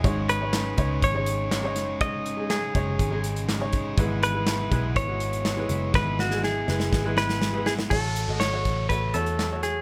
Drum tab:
CC |----------------|----------------|----------------|----------------|
HH |x-x-x-x-x-x-x-x-|x-x-x-x-x-xxx-x-|x-x-x-x-x-xxx-x-|----------------|
CP |----x-------x---|----x-------x---|----x-------x---|----------------|
SD |----o-------o-o-|----o-------o---|----o-------o---|o-ooo-ooo-ooo-oo|
BD |o-----o-o-------|o-----o-o-----o-|o-----o-o-------|o-------o-------|

CC |x---------------|
HH |--x-x-x-x-xxx-x-|
CP |----x-------x---|
SD |----o-------o-o-|
BD |o-----o-o-------|